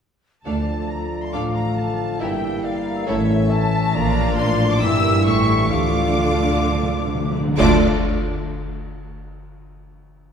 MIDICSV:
0, 0, Header, 1, 13, 480
1, 0, Start_track
1, 0, Key_signature, -1, "minor"
1, 0, Tempo, 436681
1, 506, Time_signature, 4, 2, 24, 8
1, 5780, Tempo, 463679
1, 11026, End_track
2, 0, Start_track
2, 0, Title_t, "Flute section"
2, 0, Program_c, 0, 73
2, 499, Note_on_c, 0, 81, 45
2, 953, Note_off_c, 0, 81, 0
2, 990, Note_on_c, 0, 82, 42
2, 1349, Note_on_c, 0, 84, 43
2, 1350, Note_off_c, 0, 82, 0
2, 1458, Note_on_c, 0, 86, 50
2, 1470, Note_off_c, 0, 84, 0
2, 1704, Note_on_c, 0, 82, 49
2, 1705, Note_off_c, 0, 86, 0
2, 1947, Note_off_c, 0, 82, 0
2, 1948, Note_on_c, 0, 81, 44
2, 2426, Note_off_c, 0, 81, 0
2, 2427, Note_on_c, 0, 79, 51
2, 2895, Note_off_c, 0, 79, 0
2, 2899, Note_on_c, 0, 77, 58
2, 3377, Note_off_c, 0, 77, 0
2, 3377, Note_on_c, 0, 76, 67
2, 3852, Note_off_c, 0, 76, 0
2, 3854, Note_on_c, 0, 81, 77
2, 4325, Note_on_c, 0, 82, 86
2, 4327, Note_off_c, 0, 81, 0
2, 4798, Note_on_c, 0, 84, 86
2, 4805, Note_off_c, 0, 82, 0
2, 5157, Note_off_c, 0, 84, 0
2, 5162, Note_on_c, 0, 86, 80
2, 5287, Note_off_c, 0, 86, 0
2, 5294, Note_on_c, 0, 88, 93
2, 5771, Note_off_c, 0, 88, 0
2, 5775, Note_on_c, 0, 85, 83
2, 6237, Note_off_c, 0, 85, 0
2, 6244, Note_on_c, 0, 86, 70
2, 7905, Note_off_c, 0, 86, 0
2, 8190, Note_on_c, 0, 74, 90
2, 8456, Note_off_c, 0, 74, 0
2, 11026, End_track
3, 0, Start_track
3, 0, Title_t, "Violin section"
3, 0, Program_c, 1, 48
3, 502, Note_on_c, 1, 81, 53
3, 954, Note_off_c, 1, 81, 0
3, 980, Note_on_c, 1, 82, 48
3, 1344, Note_on_c, 1, 84, 53
3, 1345, Note_off_c, 1, 82, 0
3, 1456, Note_on_c, 1, 86, 52
3, 1467, Note_off_c, 1, 84, 0
3, 1544, Note_off_c, 1, 86, 0
3, 1698, Note_on_c, 1, 82, 56
3, 1939, Note_off_c, 1, 82, 0
3, 1947, Note_on_c, 1, 81, 56
3, 2426, Note_off_c, 1, 81, 0
3, 2426, Note_on_c, 1, 79, 68
3, 2903, Note_on_c, 1, 77, 65
3, 2904, Note_off_c, 1, 79, 0
3, 3374, Note_on_c, 1, 76, 73
3, 3379, Note_off_c, 1, 77, 0
3, 3844, Note_on_c, 1, 81, 85
3, 3851, Note_off_c, 1, 76, 0
3, 4315, Note_on_c, 1, 82, 97
3, 4322, Note_off_c, 1, 81, 0
3, 4790, Note_on_c, 1, 84, 89
3, 4800, Note_off_c, 1, 82, 0
3, 5153, Note_off_c, 1, 84, 0
3, 5181, Note_on_c, 1, 86, 95
3, 5285, Note_on_c, 1, 88, 100
3, 5296, Note_off_c, 1, 86, 0
3, 5773, Note_on_c, 1, 85, 90
3, 5777, Note_off_c, 1, 88, 0
3, 6236, Note_off_c, 1, 85, 0
3, 6250, Note_on_c, 1, 86, 87
3, 7942, Note_off_c, 1, 86, 0
3, 8187, Note_on_c, 1, 86, 96
3, 8454, Note_off_c, 1, 86, 0
3, 11026, End_track
4, 0, Start_track
4, 0, Title_t, "Clarinet"
4, 0, Program_c, 2, 71
4, 505, Note_on_c, 2, 74, 41
4, 1426, Note_off_c, 2, 74, 0
4, 1478, Note_on_c, 2, 77, 52
4, 2412, Note_off_c, 2, 77, 0
4, 2421, Note_on_c, 2, 76, 51
4, 2904, Note_on_c, 2, 74, 56
4, 2920, Note_off_c, 2, 76, 0
4, 3363, Note_off_c, 2, 74, 0
4, 3369, Note_on_c, 2, 73, 61
4, 3848, Note_on_c, 2, 76, 68
4, 3864, Note_off_c, 2, 73, 0
4, 4337, Note_on_c, 2, 74, 79
4, 4354, Note_off_c, 2, 76, 0
4, 5291, Note_off_c, 2, 74, 0
4, 5297, Note_on_c, 2, 76, 83
4, 5766, Note_off_c, 2, 76, 0
4, 5773, Note_on_c, 2, 76, 69
4, 6242, Note_on_c, 2, 77, 68
4, 6257, Note_off_c, 2, 76, 0
4, 7937, Note_off_c, 2, 77, 0
4, 11026, End_track
5, 0, Start_track
5, 0, Title_t, "Violin section"
5, 0, Program_c, 3, 48
5, 495, Note_on_c, 3, 69, 35
5, 497, Note_on_c, 3, 77, 39
5, 726, Note_off_c, 3, 69, 0
5, 727, Note_off_c, 3, 77, 0
5, 1464, Note_on_c, 3, 77, 40
5, 1468, Note_on_c, 3, 69, 41
5, 1691, Note_off_c, 3, 77, 0
5, 1693, Note_off_c, 3, 69, 0
5, 2421, Note_on_c, 3, 76, 47
5, 2422, Note_on_c, 3, 70, 49
5, 2646, Note_off_c, 3, 76, 0
5, 2647, Note_off_c, 3, 70, 0
5, 3377, Note_on_c, 3, 69, 64
5, 3378, Note_on_c, 3, 73, 62
5, 3599, Note_off_c, 3, 69, 0
5, 3599, Note_off_c, 3, 73, 0
5, 4320, Note_on_c, 3, 77, 75
5, 4325, Note_on_c, 3, 65, 68
5, 5243, Note_off_c, 3, 77, 0
5, 5245, Note_off_c, 3, 65, 0
5, 5289, Note_on_c, 3, 67, 75
5, 5293, Note_on_c, 3, 76, 70
5, 5756, Note_off_c, 3, 67, 0
5, 5756, Note_off_c, 3, 76, 0
5, 5769, Note_on_c, 3, 67, 66
5, 5769, Note_on_c, 3, 76, 67
5, 6234, Note_off_c, 3, 67, 0
5, 6234, Note_off_c, 3, 76, 0
5, 6234, Note_on_c, 3, 77, 62
5, 6238, Note_on_c, 3, 65, 59
5, 7955, Note_off_c, 3, 77, 0
5, 7957, Note_off_c, 3, 65, 0
5, 8183, Note_on_c, 3, 74, 82
5, 8184, Note_on_c, 3, 65, 79
5, 8452, Note_off_c, 3, 74, 0
5, 8453, Note_off_c, 3, 65, 0
5, 11026, End_track
6, 0, Start_track
6, 0, Title_t, "Harp"
6, 0, Program_c, 4, 46
6, 498, Note_on_c, 4, 50, 38
6, 620, Note_on_c, 4, 57, 31
6, 743, Note_on_c, 4, 65, 33
6, 871, Note_on_c, 4, 69, 30
6, 987, Note_on_c, 4, 74, 33
6, 1111, Note_on_c, 4, 77, 34
6, 1228, Note_on_c, 4, 81, 33
6, 1349, Note_on_c, 4, 86, 33
6, 1456, Note_off_c, 4, 81, 0
6, 1470, Note_on_c, 4, 81, 40
6, 1579, Note_off_c, 4, 77, 0
6, 1592, Note_on_c, 4, 77, 39
6, 1701, Note_off_c, 4, 74, 0
6, 1714, Note_on_c, 4, 74, 34
6, 1825, Note_off_c, 4, 69, 0
6, 1838, Note_on_c, 4, 69, 37
6, 1935, Note_off_c, 4, 57, 0
6, 1948, Note_on_c, 4, 57, 34
6, 2051, Note_off_c, 4, 65, 0
6, 2065, Note_on_c, 4, 65, 33
6, 2170, Note_off_c, 4, 57, 0
6, 2183, Note_on_c, 4, 57, 37
6, 2296, Note_off_c, 4, 65, 0
6, 2310, Note_on_c, 4, 65, 37
6, 2429, Note_on_c, 4, 43, 47
6, 2443, Note_off_c, 4, 50, 0
6, 2444, Note_off_c, 4, 57, 0
6, 2446, Note_off_c, 4, 81, 0
6, 2446, Note_off_c, 4, 86, 0
6, 2447, Note_off_c, 4, 65, 0
6, 2448, Note_off_c, 4, 74, 0
6, 2448, Note_off_c, 4, 77, 0
6, 2450, Note_off_c, 4, 69, 0
6, 2544, Note_on_c, 4, 55, 38
6, 2665, Note_on_c, 4, 64, 39
6, 2783, Note_on_c, 4, 70, 44
6, 2897, Note_on_c, 4, 76, 48
6, 3002, Note_off_c, 4, 70, 0
6, 3015, Note_on_c, 4, 70, 46
6, 3136, Note_on_c, 4, 82, 52
6, 3255, Note_on_c, 4, 88, 54
6, 3374, Note_on_c, 4, 45, 66
6, 3394, Note_off_c, 4, 70, 0
6, 3396, Note_off_c, 4, 82, 0
6, 3397, Note_off_c, 4, 55, 0
6, 3399, Note_off_c, 4, 43, 0
6, 3488, Note_on_c, 4, 52, 47
6, 3603, Note_off_c, 4, 64, 0
6, 3616, Note_on_c, 4, 64, 43
6, 3731, Note_on_c, 4, 69, 55
6, 3849, Note_on_c, 4, 73, 56
6, 3961, Note_off_c, 4, 76, 0
6, 3974, Note_on_c, 4, 76, 51
6, 4093, Note_on_c, 4, 81, 65
6, 4207, Note_on_c, 4, 85, 64
6, 4332, Note_on_c, 4, 46, 77
6, 4341, Note_off_c, 4, 52, 0
6, 4343, Note_off_c, 4, 45, 0
6, 4343, Note_off_c, 4, 69, 0
6, 4343, Note_off_c, 4, 73, 0
6, 4343, Note_off_c, 4, 88, 0
6, 4345, Note_off_c, 4, 64, 0
6, 4345, Note_off_c, 4, 85, 0
6, 4347, Note_off_c, 4, 76, 0
6, 4347, Note_off_c, 4, 81, 0
6, 4448, Note_on_c, 4, 53, 55
6, 4571, Note_on_c, 4, 62, 54
6, 4692, Note_on_c, 4, 65, 58
6, 4806, Note_on_c, 4, 74, 63
6, 4918, Note_off_c, 4, 65, 0
6, 4931, Note_on_c, 4, 65, 62
6, 5052, Note_on_c, 4, 77, 63
6, 5296, Note_on_c, 4, 43, 77
6, 5309, Note_off_c, 4, 74, 0
6, 5311, Note_off_c, 4, 53, 0
6, 5312, Note_off_c, 4, 46, 0
6, 5312, Note_off_c, 4, 62, 0
6, 5312, Note_off_c, 4, 65, 0
6, 5312, Note_off_c, 4, 77, 0
6, 5419, Note_on_c, 4, 55, 61
6, 5535, Note_on_c, 4, 64, 53
6, 5659, Note_on_c, 4, 67, 60
6, 5782, Note_on_c, 4, 45, 66
6, 5801, Note_off_c, 4, 43, 0
6, 5897, Note_on_c, 4, 52, 47
6, 5998, Note_off_c, 4, 64, 0
6, 6010, Note_on_c, 4, 64, 53
6, 6122, Note_off_c, 4, 67, 0
6, 6134, Note_on_c, 4, 67, 47
6, 6249, Note_on_c, 4, 50, 62
6, 6266, Note_off_c, 4, 64, 0
6, 6268, Note_off_c, 4, 52, 0
6, 6269, Note_off_c, 4, 45, 0
6, 6269, Note_off_c, 4, 67, 0
6, 6271, Note_off_c, 4, 55, 0
6, 6366, Note_on_c, 4, 57, 44
6, 6488, Note_on_c, 4, 62, 45
6, 6605, Note_on_c, 4, 65, 44
6, 6722, Note_on_c, 4, 69, 47
6, 6844, Note_on_c, 4, 74, 43
6, 6966, Note_on_c, 4, 77, 50
6, 7085, Note_on_c, 4, 81, 45
6, 7192, Note_off_c, 4, 77, 0
6, 7204, Note_on_c, 4, 77, 50
6, 7315, Note_off_c, 4, 74, 0
6, 7327, Note_on_c, 4, 74, 49
6, 7438, Note_off_c, 4, 69, 0
6, 7450, Note_on_c, 4, 69, 41
6, 7558, Note_off_c, 4, 65, 0
6, 7570, Note_on_c, 4, 65, 44
6, 7676, Note_off_c, 4, 57, 0
6, 7688, Note_on_c, 4, 57, 41
6, 7794, Note_off_c, 4, 62, 0
6, 7807, Note_on_c, 4, 62, 41
6, 7921, Note_off_c, 4, 57, 0
6, 7933, Note_on_c, 4, 57, 42
6, 8047, Note_off_c, 4, 62, 0
6, 8059, Note_on_c, 4, 62, 39
6, 8123, Note_off_c, 4, 50, 0
6, 8127, Note_on_c, 4, 50, 81
6, 8151, Note_off_c, 4, 62, 0
6, 8156, Note_on_c, 4, 62, 75
6, 8169, Note_off_c, 4, 65, 0
6, 8170, Note_off_c, 4, 77, 0
6, 8172, Note_off_c, 4, 69, 0
6, 8182, Note_on_c, 4, 65, 78
6, 8212, Note_on_c, 4, 69, 80
6, 8236, Note_on_c, 4, 77, 80
6, 8451, Note_off_c, 4, 50, 0
6, 8452, Note_off_c, 4, 62, 0
6, 8452, Note_off_c, 4, 65, 0
6, 8452, Note_off_c, 4, 77, 0
6, 8453, Note_off_c, 4, 69, 0
6, 10120, Note_off_c, 4, 57, 0
6, 10124, Note_off_c, 4, 74, 0
6, 10124, Note_off_c, 4, 81, 0
6, 11026, End_track
7, 0, Start_track
7, 0, Title_t, "French horn section"
7, 0, Program_c, 5, 60
7, 504, Note_on_c, 5, 65, 44
7, 512, Note_on_c, 5, 57, 38
7, 2383, Note_off_c, 5, 65, 0
7, 2387, Note_off_c, 5, 57, 0
7, 2421, Note_on_c, 5, 58, 46
7, 2427, Note_on_c, 5, 64, 46
7, 3357, Note_off_c, 5, 58, 0
7, 3360, Note_off_c, 5, 64, 0
7, 3363, Note_on_c, 5, 61, 60
7, 3369, Note_on_c, 5, 57, 61
7, 4318, Note_off_c, 5, 61, 0
7, 4322, Note_off_c, 5, 57, 0
7, 4329, Note_on_c, 5, 58, 70
7, 4329, Note_on_c, 5, 62, 77
7, 5291, Note_off_c, 5, 62, 0
7, 5306, Note_on_c, 5, 64, 70
7, 5751, Note_off_c, 5, 58, 0
7, 5779, Note_on_c, 5, 57, 72
7, 6245, Note_on_c, 5, 65, 63
7, 6256, Note_off_c, 5, 64, 0
7, 7905, Note_off_c, 5, 65, 0
7, 7941, Note_off_c, 5, 57, 0
7, 8182, Note_on_c, 5, 65, 81
7, 8185, Note_on_c, 5, 57, 86
7, 8384, Note_off_c, 5, 65, 0
7, 8386, Note_off_c, 5, 57, 0
7, 11026, End_track
8, 0, Start_track
8, 0, Title_t, "Viola section"
8, 0, Program_c, 6, 48
8, 498, Note_on_c, 6, 62, 41
8, 501, Note_on_c, 6, 57, 39
8, 727, Note_off_c, 6, 62, 0
8, 729, Note_off_c, 6, 57, 0
8, 1470, Note_on_c, 6, 57, 39
8, 1472, Note_on_c, 6, 62, 38
8, 1694, Note_off_c, 6, 57, 0
8, 1695, Note_off_c, 6, 62, 0
8, 2422, Note_on_c, 6, 52, 50
8, 2423, Note_on_c, 6, 64, 51
8, 2647, Note_off_c, 6, 52, 0
8, 2647, Note_off_c, 6, 64, 0
8, 3370, Note_on_c, 6, 57, 55
8, 3374, Note_on_c, 6, 64, 59
8, 3595, Note_off_c, 6, 57, 0
8, 3597, Note_off_c, 6, 64, 0
8, 4321, Note_on_c, 6, 62, 78
8, 4324, Note_on_c, 6, 58, 76
8, 5243, Note_off_c, 6, 62, 0
8, 5245, Note_off_c, 6, 58, 0
8, 5276, Note_on_c, 6, 58, 68
8, 5276, Note_on_c, 6, 64, 65
8, 5751, Note_off_c, 6, 64, 0
8, 5762, Note_off_c, 6, 58, 0
8, 5764, Note_on_c, 6, 64, 59
8, 5770, Note_on_c, 6, 57, 59
8, 6228, Note_off_c, 6, 57, 0
8, 6232, Note_off_c, 6, 64, 0
8, 6236, Note_on_c, 6, 62, 68
8, 6241, Note_on_c, 6, 57, 66
8, 7924, Note_off_c, 6, 57, 0
8, 7956, Note_off_c, 6, 62, 0
8, 8190, Note_on_c, 6, 57, 84
8, 8194, Note_on_c, 6, 62, 92
8, 8456, Note_off_c, 6, 57, 0
8, 8458, Note_off_c, 6, 62, 0
8, 11026, End_track
9, 0, Start_track
9, 0, Title_t, "Trombone section"
9, 0, Program_c, 7, 61
9, 497, Note_on_c, 7, 50, 41
9, 503, Note_on_c, 7, 53, 41
9, 2380, Note_off_c, 7, 50, 0
9, 2382, Note_off_c, 7, 53, 0
9, 2417, Note_on_c, 7, 52, 53
9, 2418, Note_on_c, 7, 55, 46
9, 3356, Note_off_c, 7, 55, 0
9, 3366, Note_on_c, 7, 57, 56
9, 4284, Note_off_c, 7, 52, 0
9, 4320, Note_off_c, 7, 57, 0
9, 4322, Note_on_c, 7, 53, 62
9, 4325, Note_off_c, 7, 53, 0
9, 4325, Note_on_c, 7, 53, 72
9, 5270, Note_off_c, 7, 53, 0
9, 5298, Note_on_c, 7, 52, 72
9, 5299, Note_on_c, 7, 55, 70
9, 6252, Note_off_c, 7, 52, 0
9, 6253, Note_off_c, 7, 55, 0
9, 6253, Note_on_c, 7, 53, 65
9, 6257, Note_on_c, 7, 50, 67
9, 7909, Note_off_c, 7, 53, 0
9, 7911, Note_off_c, 7, 50, 0
9, 8191, Note_on_c, 7, 53, 82
9, 8195, Note_on_c, 7, 50, 87
9, 8390, Note_off_c, 7, 53, 0
9, 8393, Note_off_c, 7, 50, 0
9, 11026, End_track
10, 0, Start_track
10, 0, Title_t, "Timpani"
10, 0, Program_c, 8, 47
10, 6256, Note_on_c, 8, 50, 36
10, 6314, Note_off_c, 8, 50, 0
10, 6326, Note_on_c, 8, 50, 37
10, 6395, Note_off_c, 8, 50, 0
10, 6407, Note_on_c, 8, 50, 38
10, 6482, Note_off_c, 8, 50, 0
10, 6576, Note_on_c, 8, 50, 37
10, 6644, Note_off_c, 8, 50, 0
10, 6656, Note_on_c, 8, 50, 43
10, 6726, Note_off_c, 8, 50, 0
10, 6738, Note_on_c, 8, 50, 43
10, 6806, Note_off_c, 8, 50, 0
10, 6818, Note_on_c, 8, 50, 47
10, 6895, Note_off_c, 8, 50, 0
10, 6907, Note_on_c, 8, 50, 49
10, 6973, Note_off_c, 8, 50, 0
10, 6985, Note_on_c, 8, 50, 51
10, 7054, Note_off_c, 8, 50, 0
10, 7066, Note_on_c, 8, 50, 56
10, 7136, Note_off_c, 8, 50, 0
10, 7148, Note_on_c, 8, 50, 58
10, 7222, Note_off_c, 8, 50, 0
10, 7235, Note_on_c, 8, 50, 58
10, 7308, Note_off_c, 8, 50, 0
10, 7320, Note_on_c, 8, 50, 58
10, 7393, Note_off_c, 8, 50, 0
10, 7406, Note_on_c, 8, 50, 62
10, 7473, Note_off_c, 8, 50, 0
10, 7486, Note_on_c, 8, 50, 73
10, 7560, Note_off_c, 8, 50, 0
10, 7572, Note_on_c, 8, 50, 75
10, 7638, Note_off_c, 8, 50, 0
10, 7651, Note_on_c, 8, 50, 72
10, 7721, Note_off_c, 8, 50, 0
10, 7734, Note_on_c, 8, 50, 86
10, 7810, Note_off_c, 8, 50, 0
10, 7823, Note_on_c, 8, 50, 84
10, 7898, Note_off_c, 8, 50, 0
10, 7910, Note_on_c, 8, 50, 88
10, 7979, Note_off_c, 8, 50, 0
10, 7992, Note_on_c, 8, 50, 89
10, 8064, Note_off_c, 8, 50, 0
10, 8077, Note_on_c, 8, 50, 90
10, 8152, Note_off_c, 8, 50, 0
10, 8192, Note_on_c, 8, 50, 107
10, 8412, Note_off_c, 8, 50, 0
10, 11026, End_track
11, 0, Start_track
11, 0, Title_t, "Cello section"
11, 0, Program_c, 10, 48
11, 501, Note_on_c, 10, 38, 47
11, 907, Note_off_c, 10, 38, 0
11, 1462, Note_on_c, 10, 45, 43
11, 1867, Note_off_c, 10, 45, 0
11, 2421, Note_on_c, 10, 43, 58
11, 2822, Note_off_c, 10, 43, 0
11, 3377, Note_on_c, 10, 45, 65
11, 3773, Note_off_c, 10, 45, 0
11, 4324, Note_on_c, 10, 46, 72
11, 4771, Note_off_c, 10, 46, 0
11, 4795, Note_on_c, 10, 45, 70
11, 5278, Note_on_c, 10, 43, 74
11, 5285, Note_off_c, 10, 45, 0
11, 5764, Note_off_c, 10, 43, 0
11, 5773, Note_on_c, 10, 45, 71
11, 6244, Note_on_c, 10, 50, 66
11, 6246, Note_off_c, 10, 45, 0
11, 7960, Note_off_c, 10, 50, 0
11, 8186, Note_on_c, 10, 50, 90
11, 8454, Note_off_c, 10, 50, 0
11, 11026, End_track
12, 0, Start_track
12, 0, Title_t, "Double bass section"
12, 0, Program_c, 11, 48
12, 501, Note_on_c, 11, 38, 41
12, 907, Note_off_c, 11, 38, 0
12, 1465, Note_on_c, 11, 33, 48
12, 1868, Note_off_c, 11, 33, 0
12, 2425, Note_on_c, 11, 31, 52
12, 2824, Note_off_c, 11, 31, 0
12, 3375, Note_on_c, 11, 33, 64
12, 3772, Note_off_c, 11, 33, 0
12, 4321, Note_on_c, 11, 34, 67
12, 4769, Note_off_c, 11, 34, 0
12, 4801, Note_on_c, 11, 33, 67
12, 5287, Note_off_c, 11, 33, 0
12, 5287, Note_on_c, 11, 31, 78
12, 5768, Note_off_c, 11, 31, 0
12, 5775, Note_on_c, 11, 33, 71
12, 6241, Note_on_c, 11, 38, 60
12, 6247, Note_off_c, 11, 33, 0
12, 7959, Note_off_c, 11, 38, 0
12, 8186, Note_on_c, 11, 38, 89
12, 8454, Note_off_c, 11, 38, 0
12, 11026, End_track
13, 0, Start_track
13, 0, Title_t, "Drums"
13, 8197, Note_on_c, 9, 35, 73
13, 8197, Note_on_c, 9, 49, 77
13, 8300, Note_off_c, 9, 35, 0
13, 8300, Note_off_c, 9, 49, 0
13, 11026, End_track
0, 0, End_of_file